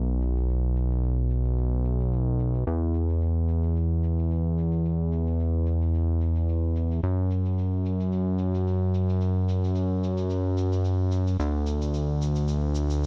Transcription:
Already playing: analog synth bass B1
0.22 shaker
0.36 shaker
0.49 shaker
0.76 shaker
0.91 shaker
1.04 shaker
1.30 shaker
1.45 shaker
1.57 shaker
1.85 shaker
2.00 shaker
2.13 shaker
2.39 shaker
2.54 shaker
2.67 analog synth bass E2, shaker
2.94 shaker
3.09 shaker
3.21 shaker
3.49 shaker
3.63 shaker
3.76 shaker
4.03 shaker
4.19 shaker
4.31 shaker
4.58 shaker
4.72 shaker
4.85 shaker
5.12 shaker
5.27 shaker
5.40 shaker
5.67 shaker
5.82 shaker
5.94 shaker
6.21 shaker
6.36 shaker
6.49 shaker
6.76 shaker
6.92 shaker
7.03 analog synth bass F#2, shaker
7.31 shaker
7.46 shaker
7.58 shaker
7.86 shaker
8.00 shaker
8.12 shaker
8.39 shaker
8.55 shaker
8.67 shaker
8.94 shaker
9.09 shaker
9.21 shaker
9.49 shaker
9.64 shaker
9.75 shaker
10.04 shaker
10.18 shaker
10.30 shaker
10.58 shaker
10.73 shaker
10.85 shaker
11.12 shaker
11.27 shaker
11.39 analog synth bass D2, shaker
11.67 shaker
11.82 shaker
11.94 shaker
12.22 shaker
12.36 shaker
12.48 shaker
12.75 shaker
12.90 shaker

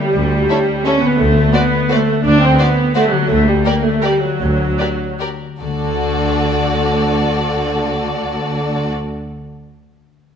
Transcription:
Already playing: harp D3 A3 C#4 E4 G4, viola section G3
0.14 double bass section D2, cello section D2
0.49 violin section E4 A4 C#5
0.85 viola section C#4, violin section E4 A4 C#5
1.01 harp D3, viola section B3
1.06 harp C4
1.10 harp D4
1.14 harp F#4
1.19 double bass section D2, cello section D2, viola section A3
1.53 viola section B3, violin section F#4 C5 D5
1.89 viola section A3, violin section F#4 C5 D5
2.24 double bass section D2, cello section D2, viola section D4
2.41 viola section C4
2.58 viola section B3, violin section F#4 C5 D5
2.95 viola section A3, violin section F#4 C5 D5
3.12 harp D3, viola section F#3
3.16 harp A#3
3.21 harp D4
3.25 viola section A3, harp G4
3.30 double bass section D2, cello section D2
3.47 viola section G3
3.65 viola section A#3, violin section G4 A#4 D5
3.85 viola section A3
4.03 viola section G3, violin section G4 A#4 D5
4.22 viola section F#3
4.40 cello section D2, double bass section D2
4.78 violin section G4 A#4 D5
5.20 violin section G4 A#4 D5
5.61 double bass section D2, cello section D2, harp D3, viola section D3, violin section F#4 A4 D5
5.69 harp A3
5.76 harp D4
5.83 harp F#4
5.90 harp D5

